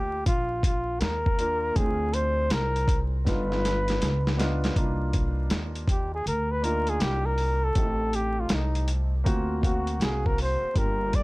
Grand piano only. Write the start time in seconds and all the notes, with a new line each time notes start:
Already playing: A#3 D4 F4 G4
1.38 A#3 D4 F4 A#4
1.76 C4 D4 E4 G#4
1.85 F4
3.25 B3 D4 D#4 F4
4.37 B3 D4 D#4 F4
4.75 A#3 D4 D#4 F4
6.62 A#3 D4 D#4 F4
7.75 A3 C4 D#4 G4
9.24 A#3 C4 F4 F#4
9.62 A#3 C4 F#4 F5
10.73 A#3 D4 F4 G4